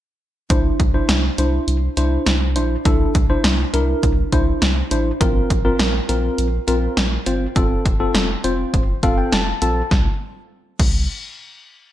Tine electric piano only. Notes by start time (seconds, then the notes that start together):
0.50 D4 E4 C5
0.94 D4 E4 C5
1.38 D4 E4 C5
1.97 D4 E4 C5
2.56 D4 E4 C5
2.85 D4 E4 A4
3.30 D4 E4 C5
3.74 D4 E4 A#4
4.32 D4 E4 C5
4.91 D4 E4 C5
5.21 C4 F4 A#4
5.65 C4 F4 A#4
6.09 C4 F4 A#4
6.68 C4 F4 A#4
7.27 C4 F4 C5
7.56 C4 F4 A4
8.00 C4 F4 A4
8.44 C4 F4 C5
9.03 C4 F4 A4 F5
9.18 G5
9.33 A5
9.62 C4 F4 A4 A5